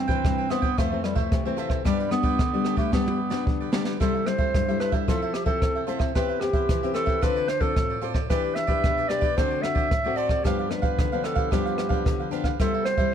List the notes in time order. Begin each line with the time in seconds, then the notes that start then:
Already playing: G2 C4
0.08 E3 C4 B4 C5 G5, kick, closed hi-hat
0.24 G2, kick, cross-stick, closed hi-hat
0.38 B4 C5 G5
0.49 E3 B3 C4 E4 B4 C5 G5, cross-stick, closed hi-hat
0.62 B4 C5 G5, kick
0.77 F2 E3 A3 C4 F4 A4 C5 E5, kick, cross-stick, closed hi-hat
0.92 E3 A3 C4 A4 C5 E5
1.04 E3 G3 A3 C4, cross-stick, closed hi-hat
1.15 A3 A4 C5 E5, kick, closed hi-hat
1.31 C3 E3 A3 C4, muted cavaquinho stroke, kick, cross-stick, closed hi-hat
1.45 E3 A3 C4 A4 C5 E5, closed hi-hat
1.57 F4 A4 C5 E5, closed hi-hat
1.69 A4 C5 E5, kick, cross-stick
1.85 G2 G3 B3 D4 G4 B4 D5, kick, cross-stick, closed hi-hat
1.99 G4 B4 D5, closed hi-hat
2.11 G3 B3 D4, muted cavaquinho stroke, cross-stick, closed hi-hat
2.23 G4 B4 D5, kick, closed hi-hat
2.39 D3, kick, cross-stick, closed hi-hat
2.53 G3 B3 D4 G4 B4 D5
2.64 D4 G4 B4 D5, cross-stick, closed hi-hat
2.77 A3 G4 B4 D5, kick, closed hi-hat
2.92 G2 G3 B3 D4 G4 B4 D5, kick, snare
3.06 G4 B4 D5, high tom
3.30 G3 B3 D4 G4 B4 D5, snare
3.46 D3, muted cavaquinho stroke, kick
3.60 G4 B4 D5
3.72 G3 B3 D4 G4 B4 D5, snare
3.84 G4 B4 D5, snare
4.00 C3 G3 A3 E4 A4 C5 E5, kick, cross-stick, closed hi-hat
4.14 A4 C5 E5
4.26 G3 A3 E4 C5, muted cavaquinho stroke, cross-stick, closed hi-hat
4.38 A4 C5 E5, kick
4.54 G2, kick, cross-stick, closed hi-hat
4.68 G3 A3 E4 A4 C5 E5, closed hi-hat
4.80 E4 A4 B4 C5 E5, cross-stick, closed hi-hat
4.92 A4 C5 E5, kick
5.07 F3 C4 E4 F4 A4 C5 E5, kick, cross-stick, closed hi-hat
5.22 A4 C5 E5
5.34 G4, cross-stick, closed hi-hat
5.46 C4 E4 A4 C5 E5, kick
5.62 C3, muted cavaquinho stroke, kick, cross-stick, closed hi-hat
5.75 A4 C5 E5
5.87 C4 E4 F4 A4 C5 E5, closed hi-hat
5.99 A4 C5 E5, kick, cross-stick
6.15 E3 B3 C4 G4 B4 C5 E5, kick, cross-stick, closed hi-hat
6.29 B4 C5 E5
6.40 B3 C4 G4, muted cavaquinho stroke, cross-stick, closed hi-hat
6.53 B4 C5 E5, kick, closed hi-hat
6.69 E3, kick, cross-stick, closed hi-hat
6.83 B3 C4 G4 B4 C5 E5, closed hi-hat
6.94 G4 A4 B4 C5 E5, cross-stick, closed hi-hat
7.06 B4 C5 E5, kick
7.21 D3 C4 F4 A4 B4 C5 D5, kick, cross-stick, closed hi-hat
7.36 A4 C5 D5, closed hi-hat
7.48 C5, cross-stick, closed hi-hat
7.60 C4 F4 A4 C5 D5, kick
7.76 A2, muted cavaquinho stroke, kick, cross-stick, closed hi-hat
7.90 A4 C5 D5
8.01 C4 F4 A4 C5 D5, closed hi-hat
8.14 A4 C5 D5, kick, cross-stick, closed hi-hat
8.30 E3 D4 E4 G4 B4 D5, kick, cross-stick, closed hi-hat
8.44 G4 B4 D5
8.55 E5, muted cavaquinho stroke, cross-stick, closed hi-hat
8.67 D4 G4 B4 D5, kick
8.84 B2, kick, cross-stick, closed hi-hat
8.97 G4 B4 D5, closed hi-hat
9.09 D4 E4 G4 B4 D5, cross-stick, closed hi-hat
9.21 G4 B4 D5, kick
9.37 D3 A3 C4 F#4 A4 C5 D5, kick, cross-stick, closed hi-hat
9.50 A4 C5 D5
9.62 A3 C4 F#4 E5, cross-stick, closed hi-hat
9.75 A4 C5 D5, kick
9.91 A2, muted cavaquinho stroke, kick, cross-stick, closed hi-hat
10.04 A3 C4 F#4 A4 C5 D5
10.16 F#4 A4 C5 D5, closed hi-hat
10.29 A4 C5 D5, kick, cross-stick
10.44 G2 F3 B3 D4 G4 B4 F5, kick, cross-stick, closed hi-hat
10.59 G4 B4 F5
10.70 F3 B3 D4 B4, muted cavaquinho stroke, cross-stick, closed hi-hat
10.82 G4 B4 F5, kick, closed hi-hat
10.98 D3, kick, cross-stick, closed hi-hat
11.12 F3 B3 D4 G4 B4 F5, closed hi-hat
11.23 D4 G4 A4 B4 F5, cross-stick, closed hi-hat
11.35 G4 B4 F5, kick
11.51 G2 F3 B3 D4 G4 B4 F5, kick, cross-stick, closed hi-hat
11.65 G4 B4 F5, closed hi-hat
11.78 cross-stick, closed hi-hat
11.89 F3 B3 D4 G4 B4 F5, kick
12.05 D3, muted cavaquinho stroke, kick, cross-stick, closed hi-hat
12.19 G4 B4 F5
12.31 F3 B3 D4 G4 B4 F5, closed hi-hat
12.44 G4 B4 F5, kick, cross-stick, closed hi-hat
12.59 C3 G3 B3 E4 A4 B4 C5 E5, kick, cross-stick, closed hi-hat
12.74 B4 C5 E5
12.85 C5, muted cavaquinho stroke, cross-stick, closed hi-hat
12.97 G3 E4 B4 C5 E5, kick